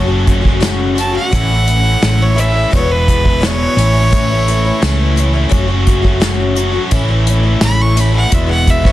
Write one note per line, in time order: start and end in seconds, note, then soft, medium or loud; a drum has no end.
0.00 1.17 F#1 loud
0.00 0.94 F#2 medium
0.00 0.95 C#3 medium
0.00 0.95 F#3 medium
0.00 0.96 A3 medium
0.00 0.96 C#4 medium
0.00 0.94 F#4 medium
0.00 0.23 A5 loud
0.07 0.43 F#3 soft
0.07 0.42 A3 medium
0.07 0.41 C#4 medium
0.07 0.40 F#4 medium
0.27 kick medium
0.27 closed hi-hat medium
0.41 0.60 F#3 soft
0.41 0.60 A3 soft
0.41 0.61 C#4 medium
0.41 0.60 F#4 medium
0.45 kick medium
0.60 0.96 F#2 medium
0.60 0.97 C#3 loud
0.60 0.94 F#3 medium
0.60 0.96 A3 medium
0.60 0.97 C#4 medium
0.60 0.97 F#4 loud
0.60 snare medium
0.60 closed hi-hat medium
0.95 1.31 C#3 medium
0.95 1.14 F#3 medium
0.95 1.14 A3 soft
0.95 1.13 C#4 medium
0.95 1.11 F#4 medium
0.95 1.15 A5 medium
0.95 closed hi-hat medium
1.00 1.31 F#2 medium
1.13 1.31 F#3 soft
1.13 1.31 A3 soft
1.13 1.32 C#4 medium
1.13 1.31 F#4 medium
1.13 2.24 F#5 loud
1.31 1.95 A1 loud
1.31 1.49 A2 medium
1.31 1.49 E3 medium
1.31 1.50 A3 medium
1.31 1.49 C#4 medium
1.31 1.47 E4 medium
1.31 kick loud
1.31 closed hi-hat medium
1.48 1.65 A3 soft
1.48 1.66 C#4 soft
1.48 1.66 E4 medium
1.65 1.84 E3 medium
1.65 1.84 A3 medium
1.65 1.83 C#4 medium
1.65 1.81 E4 medium
1.65 closed hi-hat medium
1.82 2.01 A3 soft
1.82 2.01 C#4 soft
1.82 2.01 E4 soft
2.01 2.65 A1 medium
2.01 2.36 A2 medium
2.01 2.34 E3 medium
2.01 2.35 A3 medium
2.01 2.36 C#4 medium
2.01 2.37 E4 medium
2.01 snare loud
2.01 closed hi-hat medium
2.22 2.41 C#5 medium
2.35 2.54 E3 medium
2.35 2.54 A3 medium
2.35 2.53 C#4 medium
2.35 2.51 E4 medium
2.35 closed hi-hat medium
2.40 2.71 A2 medium
2.40 2.71 E3 medium
2.40 2.72 E5 medium
2.53 2.72 A3 soft
2.53 2.72 C#4 soft
2.53 2.71 E4 soft
2.71 3.66 E1 medium
2.71 2.89 E2 medium
2.71 2.89 B2 medium
2.71 2.90 E3 medium
2.71 2.90 G#3 medium
2.71 2.89 B3 medium
2.71 2.88 E4 medium
2.71 2.93 C#5 medium
2.71 kick loud
2.71 closed hi-hat medium
2.89 3.25 E3 soft
2.89 3.25 G#3 medium
2.89 3.24 B3 medium
2.89 3.22 E4 medium
2.89 3.47 B4 medium
3.08 kick medium
3.08 closed hi-hat medium
3.23 3.40 E3 soft
3.23 3.40 G#3 soft
3.23 3.41 B3 soft
3.23 3.41 E4 soft
3.23 kick medium
3.40 3.76 E2 medium
3.40 3.76 B2 medium
3.40 3.75 E3 medium
3.40 3.77 G#3 medium
3.40 3.77 B3 medium
3.40 3.77 E4 medium
3.40 snare medium
3.40 closed hi-hat medium
3.46 5.50 C#5 loud
3.76 4.70 A1 medium
3.76 4.79 A2 medium
3.76 3.94 E3 medium
3.76 3.95 A3 medium
3.76 3.95 C#4 medium
3.76 3.92 E4 medium
3.76 closed hi-hat medium
3.94 4.11 A3 soft
3.94 4.11 C#4 soft
3.94 4.11 E4 medium
4.10 4.29 A2 medium
4.10 4.29 E3 medium
4.10 4.30 A3 medium
4.10 4.30 C#4 medium
4.10 4.28 E4 medium
4.10 kick loud
4.10 closed hi-hat medium
4.30 4.47 A3 soft
4.30 4.48 C#4 medium
4.30 4.47 E4 medium
4.47 4.65 E3 medium
4.47 4.65 A3 medium
4.47 4.65 C#4 medium
4.47 4.63 E4 medium
4.47 closed hi-hat medium
4.65 4.82 A3 soft
4.65 4.83 C#4 soft
4.65 4.82 E4 medium
4.82 5.45 C#2 medium
4.82 5.17 A2 medium
4.82 5.50 E3 medium
4.82 5.16 A3 medium
4.82 5.17 C#4 medium
4.82 5.18 E4 medium
4.82 snare loud
4.82 closed hi-hat medium
5.16 5.34 E3 medium
5.16 5.35 A3 medium
5.16 5.34 C#4 medium
5.16 5.32 E4 medium
5.16 closed hi-hat medium
5.33 5.49 A3 soft
5.33 5.50 C#4 soft
5.33 5.51 E4 medium
5.49 6.77 F#1 loud
5.49 5.68 F#2 medium
5.49 5.68 C#3 medium
5.49 5.69 F#3 medium
5.49 5.68 A3 medium
5.49 5.67 C#4 medium
5.49 5.66 F#4 medium
5.49 kick loud
5.49 closed hi-hat medium
5.68 6.04 F#3 medium
5.68 6.03 A3 medium
5.68 6.02 C#4 medium
5.68 6.01 F#4 medium
5.87 kick medium
5.87 closed hi-hat medium
6.02 6.20 F#3 medium
6.02 6.20 A3 medium
6.02 6.21 C#4 medium
6.02 6.21 F#4 medium
6.02 kick medium
6.20 6.56 F#2 medium
6.20 6.56 C#3 medium
6.20 6.54 F#3 medium
6.20 6.56 A3 medium
6.20 6.57 C#4 medium
6.20 6.57 F#4 loud
6.20 snare loud
6.20 closed hi-hat medium
6.55 6.91 F#2 medium
6.55 6.91 C#3 medium
6.55 6.74 F#3 medium
6.55 6.73 A3 medium
6.55 6.72 C#4 medium
6.55 6.71 F#4 medium
6.55 closed hi-hat medium
6.72 6.91 F#3 soft
6.72 6.91 A3 soft
6.72 6.91 C#4 soft
6.72 6.91 F#4 medium
6.91 7.54 A1 loud
6.91 7.09 A2 medium
6.91 7.09 E3 medium
6.91 7.09 A3 medium
6.91 7.10 C#4 loud
6.91 7.07 E4 medium
6.91 kick loud
6.91 closed hi-hat medium
6.91 tambourine medium
7.08 7.27 A3 soft
7.08 7.28 C#4 medium
7.08 7.27 E4 medium
7.27 7.45 E3 medium
7.27 7.45 A3 medium
7.27 7.44 C#4 medium
7.27 7.42 E4 medium
7.27 closed hi-hat medium
7.27 tambourine soft
7.43 7.60 A3 soft
7.43 7.61 C#4 soft
7.43 7.61 E4 soft
7.61 8.24 A1 medium
7.61 7.96 A2 medium
7.61 7.95 E3 medium
7.61 7.96 A3 medium
7.61 7.97 C#4 medium
7.61 7.98 E4 medium
7.61 7.83 B5 loud
7.61 snare loud
7.61 closed hi-hat loud
7.61 tambourine medium
7.82 8.02 C#6 loud
7.96 8.31 A2 medium
7.96 8.14 E3 medium
7.96 8.15 A3 medium
7.96 8.13 C#4 medium
7.96 8.11 E4 medium
7.96 closed hi-hat medium
7.96 tambourine medium
8.00 8.15 B5 medium
8.12 8.32 C#4 soft
8.12 8.31 E4 medium
8.12 8.35 F#5 loud
8.16 8.32 A3 soft
8.30 8.92 E1 medium
8.30 8.49 E2 medium
8.30 8.49 B2 medium
8.30 8.49 E3 medium
8.30 8.48 G#3 medium
8.30 8.47 B3 medium
8.30 8.45 E4 medium
8.30 8.49 E5 medium
8.30 kick loud
8.30 closed hi-hat loud
8.47 8.85 E3 soft
8.47 8.84 G#3 medium
8.47 8.83 B3 medium
8.47 8.81 E4 medium
8.47 8.71 F#5 loud
8.67 8.88 E5 medium
8.67 kick medium
8.67 closed hi-hat medium
8.82 8.92 G#3 soft
8.82 8.92 B3 soft
8.82 8.92 E4 medium
8.82 kick medium
8.82 snare soft
8.86 8.92 E3 soft
8.86 8.92 C#5 medium